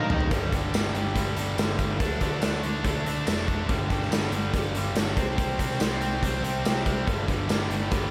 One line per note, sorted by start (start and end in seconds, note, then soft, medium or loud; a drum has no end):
0.00 0.30 A#3 medium
0.00 0.29 D#4 medium
0.00 0.29 A#4 medium
0.00 0.10 A#4 loud
0.10 0.30 D#2 loud
0.10 0.31 D#3 medium
0.10 0.31 A#3 medium
0.10 0.28 D#4 medium
0.10 0.31 D#4 loud
0.10 0.28 A#4 medium
0.10 0.28 D#5 medium
0.10 floor tom loud
0.20 floor tom medium
0.31 0.50 G1 medium
0.31 0.52 G2 medium
0.31 0.53 D3 medium
0.31 0.53 G3 medium
0.31 kick loud
0.31 closed hi-hat medium
0.52 0.71 G1 medium
0.52 0.73 G2 medium
0.52 0.73 D3 medium
0.52 0.74 G3 medium
0.52 kick medium
0.52 closed hi-hat medium
0.73 0.92 G1 medium
0.73 0.93 G2 medium
0.73 0.93 D3 medium
0.73 0.94 G3 loud
0.73 snare loud
0.73 closed hi-hat medium
0.73 tambourine loud
0.94 1.13 G1 medium
0.94 1.13 G2 medium
0.94 1.14 D3 medium
0.94 1.14 G3 medium
0.94 closed hi-hat medium
1.15 1.34 G1 medium
1.15 1.35 G2 medium
1.15 1.35 D3 medium
1.15 1.36 G3 loud
1.15 kick medium
1.15 closed hi-hat medium
1.36 1.56 G1 medium
1.36 1.55 G2 medium
1.36 1.56 D3 medium
1.36 1.56 G3 loud
1.36 closed hi-hat medium
1.56 1.77 G1 medium
1.56 1.77 G2 medium
1.56 1.77 D3 loud
1.56 1.77 G3 loud
1.56 snare loud
1.56 closed hi-hat medium
1.56 tambourine loud
1.78 1.98 G1 medium
1.78 1.98 G2 medium
1.78 1.97 D3 medium
1.78 1.99 G3 medium
1.78 kick medium
1.78 closed hi-hat medium
1.98 2.19 D2 medium
1.98 2.20 D3 medium
1.98 2.21 A3 medium
1.98 2.22 D4 loud
1.98 kick loud
1.98 closed hi-hat medium
2.21 2.40 D2 medium
2.21 2.40 D3 medium
2.21 2.41 A3 medium
2.21 2.42 D4 medium
2.21 kick medium
2.21 closed hi-hat medium
2.41 2.80 D2 medium
2.41 2.62 D3 medium
2.41 2.62 A3 loud
2.41 2.62 D4 loud
2.41 snare loud
2.41 closed hi-hat medium
2.41 tambourine medium
2.63 2.84 D3 medium
2.63 2.84 A3 medium
2.63 2.84 D4 medium
2.63 closed hi-hat medium
2.84 3.03 D2 medium
2.84 3.04 D3 medium
2.84 3.04 A3 loud
2.84 3.05 D4 medium
2.84 kick medium
2.84 closed hi-hat medium
3.05 3.25 D2 medium
3.05 3.25 D3 medium
3.05 3.25 A3 medium
3.05 3.25 D4 loud
3.05 closed hi-hat medium
3.26 3.65 F1 medium
3.26 3.45 D3 medium
3.26 3.46 A3 loud
3.26 3.47 D4 loud
3.26 snare loud
3.26 closed hi-hat medium
3.26 tambourine loud
3.47 3.67 D3 medium
3.47 3.68 A3 medium
3.47 3.68 D4 medium
3.47 kick medium
3.47 closed hi-hat soft
3.68 3.88 G1 medium
3.68 3.89 G2 loud
3.68 3.90 D3 loud
3.68 3.91 G3 loud
3.68 kick loud
3.68 closed hi-hat medium
3.90 4.09 G1 medium
3.90 4.09 G2 medium
3.90 4.10 D3 medium
3.90 4.12 G3 medium
3.90 kick medium
3.90 closed hi-hat medium
4.02 snare soft
4.10 4.29 G1 medium
4.10 4.31 G2 medium
4.10 4.31 D3 loud
4.10 4.33 G3 loud
4.10 snare medium
4.10 closed hi-hat medium
4.10 tambourine loud
4.31 4.51 G1 medium
4.31 4.52 G2 medium
4.31 4.54 D3 medium
4.31 4.55 G3 medium
4.31 closed hi-hat medium
4.54 4.72 G1 medium
4.54 4.74 G2 medium
4.54 4.75 D3 medium
4.54 4.76 G3 medium
4.54 kick medium
4.54 closed hi-hat medium
4.73 4.92 G1 medium
4.73 4.95 G2 medium
4.73 4.95 D3 medium
4.73 closed hi-hat medium
4.77 4.96 G3 medium
4.93 5.13 G1 medium
4.93 5.16 G2 medium
4.93 5.16 D3 loud
4.93 5.17 G3 loud
4.93 snare loud
4.93 closed hi-hat medium
4.93 tambourine loud
5.16 5.36 C2 medium
5.16 5.35 C3 medium
5.16 5.37 G3 medium
5.16 5.36 C4 medium
5.16 kick medium
5.16 closed hi-hat medium
5.36 5.57 C2 medium
5.36 5.57 C3 loud
5.36 5.58 G3 medium
5.36 5.58 C4 loud
5.36 kick loud
5.36 closed hi-hat medium
5.58 5.78 C2 medium
5.58 5.79 C3 medium
5.58 5.81 G3 medium
5.58 5.80 C4 medium
5.58 kick medium
5.58 closed hi-hat medium
5.71 snare soft
5.80 6.18 C2 medium
5.80 6.00 C3 medium
5.80 6.01 G3 medium
5.80 6.01 C4 loud
5.80 snare loud
5.80 closed hi-hat medium
5.80 tambourine loud
6.01 6.22 C3 medium
6.01 6.22 G3 medium
6.01 6.23 C4 medium
6.01 closed hi-hat medium
6.23 6.41 C2 medium
6.23 6.42 C3 medium
6.23 6.43 G3 medium
6.23 6.43 C4 medium
6.23 kick medium
6.23 closed hi-hat medium
6.43 6.62 C2 medium
6.43 6.62 C3 medium
6.43 6.63 G3 medium
6.43 6.63 C4 medium
6.43 closed hi-hat medium
6.63 7.02 C2 medium
6.63 6.84 C3 medium
6.63 6.84 G3 loud
6.63 6.85 C4 loud
6.63 snare loud
6.63 closed hi-hat medium
6.63 tambourine loud
6.85 7.05 C3 medium
6.85 7.04 G3 medium
6.85 7.06 C4 medium
6.85 kick medium
6.85 closed hi-hat medium
7.05 7.26 G1 medium
7.05 7.25 G2 medium
7.05 7.25 D3 medium
7.05 7.26 G3 medium
7.05 kick loud
7.05 closed hi-hat medium
7.26 7.47 G1 medium
7.26 7.47 G2 medium
7.26 7.48 D3 medium
7.26 7.48 G3 medium
7.26 kick medium
7.26 closed hi-hat medium
7.48 7.68 G1 medium
7.48 7.68 G2 medium
7.48 7.69 D3 loud
7.48 7.69 G3 loud
7.48 snare medium
7.48 closed hi-hat medium
7.48 tambourine loud
7.69 7.89 G1 medium
7.69 7.90 G2 medium
7.69 7.90 D3 medium
7.69 7.90 G3 medium
7.69 closed hi-hat medium
7.91 8.10 G1 medium
7.91 8.11 G2 medium
7.91 8.11 D3 medium
7.91 8.11 G3 loud
7.91 kick medium
7.91 closed hi-hat medium